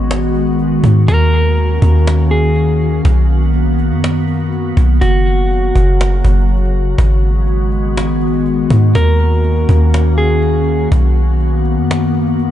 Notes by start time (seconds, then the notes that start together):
Already playing: G#1 D#3 G#3 B3 F#4
0.11 cajon slap
0.35 cajon slap
0.41 cajon slap
0.47 cajon slap
0.53 cajon slap
0.59 cajon slap
0.84 G#2, cajon bass
1.08 D#2 A#3 C#4 A#4, cajon bass
1.57 cajon slap
1.82 D#2, cajon bass
2.07 cajon slap
2.31 G#4, cajon slap
2.37 cajon slap
2.44 cajon slap
2.50 cajon slap
2.56 cajon slap
3.05 B1 B3 F#4, cajon bass
3.54 cajon slap
3.79 cajon slap
3.91 F#2
4.04 cajon slap
4.28 cajon slap
4.34 cajon slap
4.40 cajon slap
4.46 cajon slap
4.53 cajon slap
4.77 B1, cajon bass
5.01 F#1 C#3 F#3 F#4, cajon bass
5.51 cajon slap
5.75 F#1, cajon bass
6.01 cajon slap
6.25 F#1, cajon bass
6.33 cajon slap
6.41 cajon slap
6.49 cajon slap
6.57 cajon slap
6.66 cajon slap
6.98 G#1 D#3 G#3 B3, cajon bass
7.48 cajon slap
7.72 cajon slap
7.97 cajon slap
8.21 cajon slap
8.27 cajon slap
8.34 cajon slap
8.40 cajon slap
8.46 cajon slap
8.70 G#2, cajon bass
8.95 D#2 A#3 C#4 A#4, cajon bass
9.44 cajon slap
9.69 D#2, cajon bass
9.94 cajon slap
10.18 G#4, cajon slap
10.24 cajon slap
10.30 cajon slap
10.36 cajon slap
10.42 cajon slap
10.92 B1 A#3 B3, cajon bass
11.41 cajon slap
11.65 cajon slap
11.78 F#2
11.91 cajon slap
12.15 cajon slap
12.21 cajon slap
12.27 cajon slap
12.33 cajon slap
12.39 cajon slap